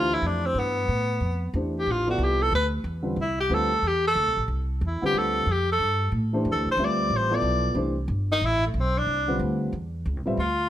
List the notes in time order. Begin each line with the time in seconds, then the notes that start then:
Already playing: D2 E3 A3 D4 F4 G4 C5
0.14 E4
0.22 F2
0.26 D4
0.46 C4
0.55 G2
0.59 B3
0.88 A2
1.21 F2
1.54 E2 E3 A3 D4 G4 C5
1.78 G4
1.86 A1
1.91 F4
2.07 F3 B3 E4 F#4 A4 D5
2.18 C2
2.24 G4
2.42 A4
2.51 D2
2.55 B4
2.84 E2
3.02 D3 G3 C4 F4 B4
3.16 C2
3.21 E4
3.40 G4
3.49 D2 D3 G3 C4 F4 B4
3.54 A4
3.82 E2
3.87 G4
4.08 A4
4.15 D2
4.27 C2
4.37 A1
4.48 C2
4.81 E2
4.87 E4
5.02 D3 G3 C4 F4 B4, muted upright bass stroke
5.06 G4
5.13 D2
5.18 A4
5.46 F2
5.52 G4
5.72 A4
5.79 G2
6.12 A2
6.33 E3 A3 D4 G4 C5
6.45 F2
6.52 D2 A4
6.66 C2
6.72 C5
6.77 D2 G3 C4 F4 B4 E5
6.85 D5
7.10 A1
7.17 C5
7.30 F3 B3 E4 A4 D5
7.35 D5
7.42 B1
7.74 C2 E3 A3 D4 G4 C5
8.08 G1
8.32 D#4
8.41 A1
8.45 E4
8.67 A3
8.74 B1
8.80 C4
8.98 D4
9.07 C2
9.28 D3 G3 C4 F4 B4
9.39 D2
9.73 E2
10.05 C#2
10.16 C2
10.26 A1 G3 C4 F4 B4 E5
10.37 D2 F4